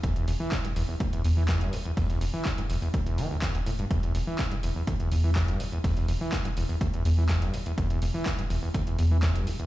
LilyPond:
<<
  \new Staff \with { instrumentName = "Acid bass" } { \clef bass \time 4/4 \key e \minor \tempo 4 = 124 e,16 e,16 e,16 e16 g,16 g,16 e,16 e,16 d,16 e,16 e,16 e16 e,16 g,16 e,,16 e,16 | e,16 e,16 e,16 e16 g,16 g,16 e,16 e,16 d,16 e,16 e16 d,16 e,16 d,16 a,16 g,16 | e,16 e,16 e,16 e16 g,16 g,16 e,16 e,16 d,16 e,16 e,16 e16 e,16 g,16 e,,16 e,16 | e,16 e,16 e,16 e16 g,16 g,16 e,16 e,16 d,16 e,16 e,16 e16 e,16 g,16 e,,16 e,16 |
e,16 e,16 e,16 e16 g,16 g,16 e,16 e,16 d,16 e,16 e,16 e16 e,16 g,16 e,,16 e,16 | }
  \new Staff \with { instrumentName = "Analog synth bass" } { \clef bass \time 4/4 \key e \minor e,,16 r16 e,,16 r8. e,,16 r8. e,8. e,,16 r8 | e,,16 r16 e,,16 r8. e,,16 r4. e,,8. | e,,16 r16 e,,16 r8. e,,16 r8. e,8. e,,16 r8 | e,,16 r16 e,,16 r8. e,,16 r8. e,8. e,,16 r8 |
e,,16 r16 e,,16 r8. e,,16 r8. e,8. e,,16 r8 | }
  \new DrumStaff \with { instrumentName = "Drums" } \drummode { \time 4/4 <hh bd>16 hh16 <hh hho sn>8 <hc hh bd sn>16 hh16 <hh hho>8 <hh bd>16 hh16 <hh hho>8 <hc hh bd sn>16 hh16 <hh hho>16 hh16 | <hh hho bd>16 <hh sn>16 <hh hho>8 <hc hh bd sn>16 hh16 <hh hho>16 hh16 <hh bd>16 hh16 <hh hho>8 <hc hh bd sn>16 <hh sn>16 <hh hho>16 hh16 | <hh bd>16 hh16 <hh hho sn>8 <hc hh bd sn>16 hh16 <hh hho>8 <hh bd>16 hh16 <hh hho>8 <hc hh bd sn>16 hh16 <hh hho>16 hh16 | <hh hho bd>16 <hh sn>16 <hh hho>8 <hc hh bd sn>16 hh16 <hh hho>16 hh16 <hh bd>16 hh16 <hh hho>8 <hc hh bd sn>16 <hh sn>16 <hh hho>16 hh16 |
<hh bd>16 hh16 <hh hho sn>8 <hc hh bd sn>16 hh16 <hh hho>8 <hh bd>16 hh16 <hh hho>8 <hc hh bd sn>16 hh16 <hh hho>16 hh16 | }
>>